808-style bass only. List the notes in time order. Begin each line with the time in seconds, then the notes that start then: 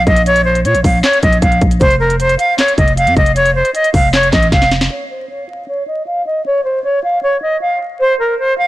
0.07 A#1
0.65 A#2
0.74 A#1
0.84 A#1
1.23 A#1
1.42 A#1
1.62 A#1
1.81 F1
2.78 F1
3.07 F2
3.17 F1
3.94 F1
4.33 A1
4.52 F1